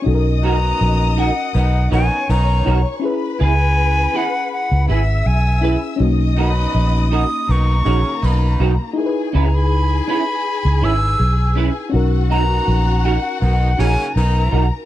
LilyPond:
<<
  \new Staff \with { instrumentName = "Flute" } { \time 4/4 \key b \major \tempo 4 = 81 r8 ais''4 fis''8 fis''8 gis''8 ais''8. r16 | r8 gis''4 fis''8 fis''8 e''8 gis''8. r16 | r8 b''4 dis'''8 cis'''4 b''8. r16 | r8 ais''16 b''8. b''4 e'''4 r8 |
r8 ais''4 fis''8 fis''8 gis''8 ais''8. r16 | }
  \new Staff \with { instrumentName = "String section" } { \time 4/4 \key b \major <dis'' dis'''>2~ <dis'' dis'''>8 <cis'' cis'''>4. | <b' b''>2~ <b' b''>8 <e'' e'''>4. | <dis'' dis'''>2 <ais ais''>2 | <gis' gis''>1 |
<fis' fis''>2. <ais' ais''>4 | }
  \new Staff \with { instrumentName = "Clean electric guitar" } { \time 4/4 \key b \major r8 <dis' fis' ais'>8 r8 <dis' fis' ais'>8 r8 <dis' fis' ais'>8 r8 <dis' fis' ais'>8 | r8 <e' gis' b'>8 r8 <e' gis' b'>8 r8 <e' gis' b'>8 r8 <e' gis' b'>8 | r8 <dis' fis' ais'>8 r8 <dis' fis' ais'>8 r8 <dis' fis' ais'>8 r8 <dis' fis' ais'>8 | r8 <cis' e' b'>8 r8 <cis' e' b'>8 r8 <cis' e' b'>8 r8 <cis' e' b'>8 |
r8 <dis' fis' ais'>8 r8 <dis' fis' ais'>8 r8 <dis' fis' ais'>8 r8 <dis' fis' ais'>8 | }
  \new Staff \with { instrumentName = "FM electric piano" } { \time 4/4 \key b \major <cis' dis' fis' a' ais'>1 | <cis' e' gis' b'>2.~ <cis' e' gis' b'>8 <cis' e' gis' b'>8 | <ais cis' dis' fis'>1 | <dis' e' gis' ais' b'>1 |
<cis' dis' fis' ais'>1 | }
  \new Staff \with { instrumentName = "Horn section" } { \time 4/4 \key b \major r8 <fis b dis' fis'>4 r8 <dis b dis'>8 <dis b dis'>8 <dis b dis'>8. r16 | r1 | r8 <fis b dis' fis'>4 r8 <dis b dis'>8 <cis fis ais cis'>8 <dis b dis'>8. r16 | r1 |
r8 <fis b dis' fis'>4 r8 <dis b dis'>8 <cis fis ais cis'>8 <dis b dis'>8. r16 | }
  \new Staff \with { instrumentName = "Fingered electric bass" } { \clef bass \time 4/4 \key b \major b,,4 ais,,8. r16 b,,8 ais,,16 r16 b,,8 b,,16 r16 | r8 cis,4 r8. cis,16 gis,,8 b,,8. r16 | b,,4 ais,,8. r16 b,,8 ais,,16 r16 b,,8 b,,16 r16 | r8 cis,4 r8. cis,16 gis,,8 b,,8. r16 |
b,,4 ais,,8. r16 b,,8 ais,,16 r16 b,,8 b,,16 r16 | }
>>